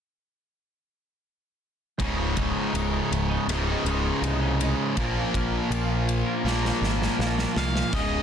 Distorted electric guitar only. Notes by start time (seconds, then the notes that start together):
1.99 C#2 G#2 C#3
3.48 C#2 G#2 C#3
4.97 A#2 F3 A#3
6.45 A#2 F3 A#3
7.93 C#2 G#2 C#3